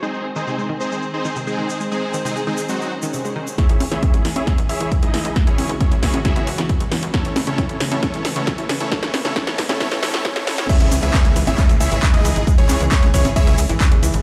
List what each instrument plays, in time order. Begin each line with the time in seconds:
0.03 string section D#3 G#3 C4 G#4 C5, synth pluck G#3, supersaw synth C4 D#4 G#4 C5, shaker
0.14 shaker
0.36 synth pluck D#3, supersaw synth C4 D#4 G#4 C5, shaker
0.47 synth pluck C3, shaker
0.58 synth pluck G#3, shaker
0.69 synth pluck D#3
0.80 supersaw synth C4 D#4 G#4 C5, shaker
0.92 synth pluck G#3, shaker
1.02 shaker
1.14 supersaw synth C4 D#4 G#4 C5
1.25 synth pluck D#3, shaker
1.36 synth pluck C3, shaker
1.47 synth pluck G#3, supersaw synth G#3 C4 D#4 G#4, shaker
1.58 synth pluck D#3
1.69 shaker
1.80 synth pluck G#3, shaker
1.92 supersaw synth G#3 C4 D#4 G#4, shaker
2.14 synth pluck D#3, shaker
2.25 synth pluck C3, supersaw synth G#3 C4 D#4 G#4, shaker
2.36 synth pluck G#3, shaker
2.47 synth pluck D#3, supersaw synth G#3 C4 D#4 G#4
2.57 shaker
2.69 supersaw synth F#3 C4 D#4 F#4, synth pluck G#3, swell, shaker
2.81 shaker
3.02 synth pluck D#3, shaker
3.13 synth pluck C3, shaker
3.25 synth pluck G#3, shaker
3.36 synth pluck D#3
3.47 shaker
3.58 string section C#3 E3 G#3 C#4 G#4, synth pluck G#3, supersaw synth E4 G#4 C#5 E5, kick, snare, closed hi-hat, riser
3.69 analog synth bass C#2, closed hi-hat
3.80 analog synth bass C#2, open hi-hat, high conga
3.91 analog synth bass C#2, synth pluck E3, supersaw synth E4 G#4 C#5 E5, snare, closed hi-hat
4.03 synth pluck C#3, kick, closed hi-hat, high conga
4.14 analog synth bass C#2, synth pluck G#3, closed hi-hat
4.25 analog synth bass C#2, synth pluck E3, snare, open hi-hat
4.36 analog synth bass G#1, supersaw synth E4 G#4 C#5 E5, closed hi-hat, high conga
4.47 synth pluck G#3, kick, snare, closed hi-hat
4.58 analog synth bass C#2, closed hi-hat
4.69 analog synth bass C#2, supersaw synth E4 G#4 C#5 E5, open hi-hat
4.80 analog synth bass G#1, synth pluck E3, closed hi-hat
4.92 synth pluck C#3, kick, closed hi-hat
5.03 analog synth bass C#2, synth pluck G#3, supersaw synth D#4 E4 G#4 D#5, closed hi-hat
5.14 analog synth bass C#2, synth pluck E3, snare, open hi-hat
5.25 analog synth bass C#2, closed hi-hat
5.36 synth pluck G#3, string section F#4, kick, snare, closed hi-hat
5.47 analog synth bass C#2, supersaw synth C#4 E4 G#4 C#5, closed hi-hat
5.58 analog synth bass C#2, open hi-hat, high conga
5.69 analog synth bass C#2, synth pluck E3, closed hi-hat
5.80 synth pluck C#3, supersaw synth C#4 E4 G#4 C#5, kick, closed hi-hat, high conga
5.92 analog synth bass C#2, synth pluck G#3, closed hi-hat
6.03 analog synth bass C#2, synth pluck E3, supersaw synth C#4 E4 G#4 C#5, kick, snare, open hi-hat
6.14 analog synth bass G#1, closed hi-hat, high conga
6.25 synth pluck G#3, supersaw synth E4 G#4 C#5 E5, kick, snare, closed hi-hat
6.36 analog synth bass C#2, closed hi-hat
6.47 analog synth bass C#2, open hi-hat
6.58 analog synth bass G#1, synth pluck E3, snare, closed hi-hat
6.69 synth pluck C#3, kick, closed hi-hat
6.80 analog synth bass C#2, synth pluck G#3, closed hi-hat
6.91 analog synth bass C#2, synth pluck E3, snare, open hi-hat
7.03 analog synth bass C#2, closed hi-hat
7.14 synth pluck E3, string section A3 B3, supersaw synth C#4 E4 A4 C#5, kick, snare, closed hi-hat
7.25 analog synth bass A1, closed hi-hat
7.36 analog synth bass A1, snare, open hi-hat, high conga
7.47 analog synth bass A1, synth pluck C#3, supersaw synth C#4 E4 A4 C#5, closed hi-hat
7.58 synth pluck B2, kick, snare, closed hi-hat, high conga
7.69 analog synth bass A1, synth pluck E3, closed hi-hat
7.80 analog synth bass A1, synth pluck C#3, snare, open hi-hat
7.91 analog synth bass A2, supersaw synth C#4 E4 A4 C#5, closed hi-hat, high conga
8.03 synth pluck E3, supersaw synth C#4 E4 A4 C#5, kick, snare, closed hi-hat
8.14 analog synth bass A1, closed hi-hat
8.25 analog synth bass A1, snare, open hi-hat
8.36 analog synth bass A2, synth pluck C#3, supersaw synth C#4 E4 A4 C#5, closed hi-hat
8.47 synth pluck B2, kick, snare, closed hi-hat
8.58 analog synth bass A1, synth pluck E3, closed hi-hat
8.69 analog synth bass A1, synth pluck C#3, snare, open hi-hat
8.80 analog synth bass A1, supersaw synth C#4 E4 A4 C#5, closed hi-hat
8.92 synth pluck E3, supersaw synth C#4 E4 A4 C#5, kick, snare, closed hi-hat
9.03 analog synth bass A1, snare, closed hi-hat
9.14 analog synth bass A1, snare, open hi-hat, high conga
9.25 analog synth bass A1, synth pluck C#3, supersaw synth C#4 E4 A4 C#5, snare, closed hi-hat
9.36 synth pluck E3, supersaw synth C#4 E4 A4 C#5, kick, snare, closed hi-hat, high conga
9.47 analog synth bass A1, snare, closed hi-hat
9.58 analog synth bass A1, kick, snare, open hi-hat
9.69 analog synth bass A2, synth pluck C#3, supersaw synth C#4 E4 A4 C#5, snare, closed hi-hat, high conga
9.80 synth pluck E3, supersaw synth C#4 E4 A4 C#5, kick, snare, closed hi-hat, swell
9.92 analog synth bass A1, snare, closed hi-hat
10.03 synth pluck E3, supersaw synth C#4 E4 A4 C#5, snare, open hi-hat
10.14 analog synth bass A2, snare, closed hi-hat
10.25 synth pluck E3, supersaw synth C#4 E4 A4 C#5, kick, snare, closed hi-hat
10.36 analog synth bass B1, snare, closed hi-hat
10.47 analog synth bass A1, synth pluck E3, supersaw synth C#4 E4 A4 C#5, snare, open hi-hat
10.58 analog synth bass A2, snare, closed hi-hat
10.69 string section C#3 E3 G#3 G#4, synth pluck G#3, supersaw synth E4 G#4 C#5 E5, grand piano E5, kick, closed hi-hat, crash, downlifter, shaker
10.80 analog synth bass C#2, closed hi-hat
10.92 analog synth bass C#2, open hi-hat, high conga, shaker
11.03 analog synth bass C#2, synth pluck E3, supersaw synth E4 G#4 C#5 E5, grand piano E5, closed hi-hat, shaker
11.14 synth pluck C#3, kick, clap, closed hi-hat, high conga, shaker
11.25 analog synth bass C#2, synth pluck G#3, closed hi-hat
11.36 analog synth bass C#2, synth pluck E3, open hi-hat, shaker
11.47 analog synth bass G#1, supersaw synth E4 G#4 C#5 E5, grand piano E5, closed hi-hat, high conga, shaker
11.58 synth pluck G#3, kick, clap, closed hi-hat, shaker
11.69 analog synth bass C#2, closed hi-hat, shaker
11.80 analog synth bass C#2, supersaw synth E4 G#4 C#5 E5, grand piano E5, open hi-hat, shaker
11.91 analog synth bass G#1, synth pluck E3, closed hi-hat, shaker
12.03 synth pluck C#3, kick, clap, closed hi-hat, shaker
12.14 analog synth bass D#2, synth pluck G#3, supersaw synth D#4 E4 G#4 D#5, grand piano D#5, closed hi-hat
12.25 analog synth bass C#2, synth pluck E3, open hi-hat, shaker
12.36 analog synth bass G#1, closed hi-hat, shaker
12.47 synth pluck G#3, kick, closed hi-hat, shaker
12.58 analog synth bass C#2, supersaw synth C#4 E4 G#4 C#5, grand piano C#5, closed hi-hat
12.69 analog synth bass C#2, clap, open hi-hat, high conga, shaker
12.80 analog synth bass C#2, synth pluck E3, closed hi-hat, shaker
12.91 synth pluck C#3, supersaw synth C#4 E4 G#4 C#5, grand piano C#5, kick, clap, closed hi-hat, high conga, shaker
13.03 analog synth bass C#2, synth pluck G#3, closed hi-hat
13.14 analog synth bass C#2, synth pluck E3, supersaw synth C#4 E4 G#4 C#5, grand piano C#5, kick, open hi-hat, shaker
13.25 analog synth bass G#1, closed hi-hat, high conga, shaker
13.36 synth pluck G#3, supersaw synth E4 G#4 C#5 E5, grand piano E5, kick, closed hi-hat, shaker
13.47 analog synth bass C#2, closed hi-hat, shaker
13.58 analog synth bass C#2, open hi-hat, shaker
13.69 analog synth bass G#1, synth pluck E3, closed hi-hat, shaker
13.80 synth pluck C#3, kick, clap, closed hi-hat, shaker
13.92 analog synth bass D#2, synth pluck G#3, closed hi-hat
14.03 analog synth bass C#2, synth pluck E3, open hi-hat, shaker
14.13 analog synth bass G#1, closed hi-hat, shaker